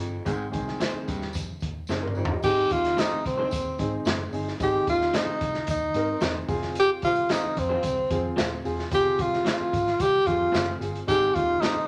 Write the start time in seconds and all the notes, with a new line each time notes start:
0.00 G1 F2, closed hi-hat
0.25 G#1 G#2 D#3 G#3 C4 G#4, kick, closed hi-hat, tambourine
0.52 C2 D#3 G#3 C4 G#4, kick, closed hi-hat, tambourine
0.68 snare
0.80 C4 D#4 G#4 C5, snare, closed hi-hat, tambourine
0.93 muted picked electric bass stroke
1.07 D#2 G2, kick, closed hi-hat, tambourine
1.22 snare
1.33 F2, kick, closed hi-hat, tambourine
1.60 D#2, kick, closed hi-hat, tambourine
1.87 F#1 C4 D#4 G#4 C5, snare, tambourine
2.03 D4 A#4
2.08 mid tom
2.15 G1 F2 D#4 C5, tambourine
2.25 floor tom
2.31 G4 D#5
2.43 G#1 C4 D#4 G4 G#4, kick, crash, tambourine
2.69 D#2 F4, kick, closed hi-hat, tambourine
2.85 snare, closed hi-hat
2.97 C4 D#4 G#4 C5, snare, closed hi-hat, tambourine
3.13 muted picked electric bass stroke
3.26 C2 C4, kick, closed hi-hat, tambourine
3.38 C4 D#4 G#4 C5
3.51 D#2, kick, closed hi-hat, tambourine
3.78 G#2 C4 D#4 G#4, kick, closed hi-hat, tambourine
4.05 F#1 C4 D#4 G#4 C5, snare, closed hi-hat, tambourine
4.33 G1 C4 D#4 G#4, open hi-hat, tambourine
4.48 snare
4.60 G#1 C4 D#4 G4 G#4, kick, closed hi-hat, tambourine
4.87 D#2 F4, kick, closed hi-hat, tambourine
5.01 snare
5.14 C4 D#4 G#4 C5, snare, closed hi-hat, tambourine
5.26 muted picked electric bass stroke
5.41 C2, kick, closed hi-hat, tambourine
5.54 snare
5.67 D#2 D#4, kick, closed hi-hat, tambourine
5.94 G#2 C4 D#4 A#4, closed hi-hat, tambourine
6.20 E1 C4 D#4 G#4 C5, snare, closed hi-hat, tambourine
6.48 F1 C4 F4 G#4, kick, open hi-hat, tambourine
6.62 snare
6.75 closed hi-hat, tambourine
6.79 G4
7.02 C2 F4, kick, closed hi-hat, tambourine
7.16 closed hi-hat
7.29 C4 D#4 F4 G#4 C5, snare, closed hi-hat, tambourine
7.45 muted picked electric bass stroke
7.57 F2 C4, kick, closed hi-hat, tambourine
7.69 C4 F4 G#4 C5
7.83 C2, kick, closed hi-hat, tambourine
8.10 F2 C4 F4 G#4, kick, closed hi-hat, tambourine
8.36 D#1 C4 F4 G#4 C5, snare, closed hi-hat, tambourine
8.64 E1 C4 F4 G#4, open hi-hat, tambourine
8.79 snare
8.91 F1 C4 F4 G4, kick, closed hi-hat, tambourine
8.99 G#4
9.19 C2 F4, kick, closed hi-hat, tambourine
9.34 snare
9.45 C4 F4 G#4 C5, snare, closed hi-hat, tambourine
9.60 muted picked electric bass stroke
9.73 G#1, kick, closed hi-hat, tambourine
9.87 snare
10.00 C2 G4, kick, closed hi-hat, tambourine
10.26 F2 C4 F4 G#4, kick, closed hi-hat, tambourine
10.52 F#1 C4 F4 G#4 C5, snare, closed hi-hat, tambourine
10.80 G1 C4 F4 G#4, closed hi-hat, tambourine
10.95 closed hi-hat
11.07 G#1 G#2 C4 D#4 G4 G#4, kick, closed hi-hat, tambourine
11.34 D#2 F4, kick, closed hi-hat, tambourine
11.60 C4 D#4 G#4 C5, snare, closed hi-hat, tambourine
11.76 muted picked electric bass stroke